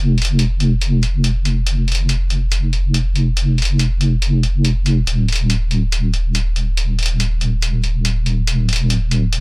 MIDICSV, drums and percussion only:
0, 0, Header, 1, 2, 480
1, 0, Start_track
1, 0, Tempo, 425532
1, 1880, Time_signature, 4, 2, 24, 8
1, 10607, End_track
2, 0, Start_track
2, 0, Title_t, "Drums"
2, 200, Note_on_c, 9, 42, 47
2, 245, Note_off_c, 9, 42, 0
2, 245, Note_on_c, 9, 42, 64
2, 279, Note_off_c, 9, 42, 0
2, 279, Note_on_c, 9, 42, 77
2, 392, Note_off_c, 9, 42, 0
2, 440, Note_on_c, 9, 42, 78
2, 552, Note_off_c, 9, 42, 0
2, 679, Note_on_c, 9, 42, 50
2, 792, Note_off_c, 9, 42, 0
2, 919, Note_on_c, 9, 42, 76
2, 1032, Note_off_c, 9, 42, 0
2, 1160, Note_on_c, 9, 42, 54
2, 1272, Note_off_c, 9, 42, 0
2, 1399, Note_on_c, 9, 42, 77
2, 1512, Note_off_c, 9, 42, 0
2, 1639, Note_on_c, 9, 42, 51
2, 1752, Note_off_c, 9, 42, 0
2, 1878, Note_on_c, 9, 42, 74
2, 1991, Note_off_c, 9, 42, 0
2, 2119, Note_on_c, 9, 42, 47
2, 2163, Note_off_c, 9, 42, 0
2, 2163, Note_on_c, 9, 42, 59
2, 2198, Note_off_c, 9, 42, 0
2, 2198, Note_on_c, 9, 42, 75
2, 2311, Note_off_c, 9, 42, 0
2, 2358, Note_on_c, 9, 42, 75
2, 2471, Note_off_c, 9, 42, 0
2, 2598, Note_on_c, 9, 42, 53
2, 2711, Note_off_c, 9, 42, 0
2, 2838, Note_on_c, 9, 42, 79
2, 2951, Note_off_c, 9, 42, 0
2, 3079, Note_on_c, 9, 42, 50
2, 3191, Note_off_c, 9, 42, 0
2, 3320, Note_on_c, 9, 42, 72
2, 3433, Note_off_c, 9, 42, 0
2, 3559, Note_on_c, 9, 42, 49
2, 3672, Note_off_c, 9, 42, 0
2, 3799, Note_on_c, 9, 42, 74
2, 3912, Note_off_c, 9, 42, 0
2, 4040, Note_on_c, 9, 42, 45
2, 4084, Note_off_c, 9, 42, 0
2, 4084, Note_on_c, 9, 42, 59
2, 4120, Note_off_c, 9, 42, 0
2, 4120, Note_on_c, 9, 42, 72
2, 4233, Note_off_c, 9, 42, 0
2, 4280, Note_on_c, 9, 42, 70
2, 4393, Note_off_c, 9, 42, 0
2, 4521, Note_on_c, 9, 42, 50
2, 4633, Note_off_c, 9, 42, 0
2, 4760, Note_on_c, 9, 42, 75
2, 4873, Note_off_c, 9, 42, 0
2, 5001, Note_on_c, 9, 42, 50
2, 5114, Note_off_c, 9, 42, 0
2, 5241, Note_on_c, 9, 42, 72
2, 5354, Note_off_c, 9, 42, 0
2, 5481, Note_on_c, 9, 42, 50
2, 5594, Note_off_c, 9, 42, 0
2, 5721, Note_on_c, 9, 42, 74
2, 5834, Note_off_c, 9, 42, 0
2, 5961, Note_on_c, 9, 42, 47
2, 6006, Note_off_c, 9, 42, 0
2, 6006, Note_on_c, 9, 42, 59
2, 6041, Note_off_c, 9, 42, 0
2, 6041, Note_on_c, 9, 42, 75
2, 6154, Note_off_c, 9, 42, 0
2, 6201, Note_on_c, 9, 42, 70
2, 6314, Note_off_c, 9, 42, 0
2, 6441, Note_on_c, 9, 42, 50
2, 6553, Note_off_c, 9, 42, 0
2, 6681, Note_on_c, 9, 42, 76
2, 6794, Note_off_c, 9, 42, 0
2, 6921, Note_on_c, 9, 42, 47
2, 7034, Note_off_c, 9, 42, 0
2, 7161, Note_on_c, 9, 42, 72
2, 7274, Note_off_c, 9, 42, 0
2, 7400, Note_on_c, 9, 42, 48
2, 7513, Note_off_c, 9, 42, 0
2, 7641, Note_on_c, 9, 42, 79
2, 7754, Note_off_c, 9, 42, 0
2, 7881, Note_on_c, 9, 42, 48
2, 7926, Note_off_c, 9, 42, 0
2, 7926, Note_on_c, 9, 42, 63
2, 7960, Note_off_c, 9, 42, 0
2, 7960, Note_on_c, 9, 42, 76
2, 8073, Note_off_c, 9, 42, 0
2, 8121, Note_on_c, 9, 42, 75
2, 8234, Note_off_c, 9, 42, 0
2, 8360, Note_on_c, 9, 42, 51
2, 8473, Note_off_c, 9, 42, 0
2, 8600, Note_on_c, 9, 42, 73
2, 8713, Note_off_c, 9, 42, 0
2, 8839, Note_on_c, 9, 42, 52
2, 8952, Note_off_c, 9, 42, 0
2, 9079, Note_on_c, 9, 42, 75
2, 9192, Note_off_c, 9, 42, 0
2, 9319, Note_on_c, 9, 42, 49
2, 9432, Note_off_c, 9, 42, 0
2, 9559, Note_on_c, 9, 42, 79
2, 9672, Note_off_c, 9, 42, 0
2, 9799, Note_on_c, 9, 42, 51
2, 9844, Note_off_c, 9, 42, 0
2, 9844, Note_on_c, 9, 42, 63
2, 9880, Note_off_c, 9, 42, 0
2, 9880, Note_on_c, 9, 42, 78
2, 9993, Note_off_c, 9, 42, 0
2, 10040, Note_on_c, 9, 42, 79
2, 10153, Note_off_c, 9, 42, 0
2, 10280, Note_on_c, 9, 42, 54
2, 10393, Note_off_c, 9, 42, 0
2, 10519, Note_on_c, 9, 42, 77
2, 10607, Note_off_c, 9, 42, 0
2, 10607, End_track
0, 0, End_of_file